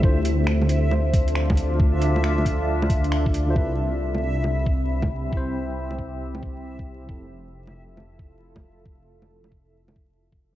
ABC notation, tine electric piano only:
X:1
M:4/4
L:1/16
Q:"Swing 16ths" 1/4=136
K:C
V:1 name="Tine electric piano"
[D,DFc] z12 z3 | z12 z3 [D,DFc] | [C,C] z12 z3 | [C,CEc]16 |
[F,CEA] z12 z3 | z16 |]